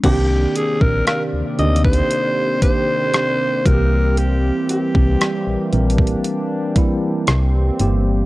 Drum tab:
CC |x-----------------------------------------------|------------------------------------------------|
HH |x-----x-----x-----x-x-x-x-----x-----x-----x-----|x-----x-----x-----x-x-x-x-----x-----x-----x-----|
SD |------------r-----------------------r-----------|------------r-----------------------r-----------|
BD |o--------o-----------o--------o-----------o-----|---------o-----------o--------o-----------------|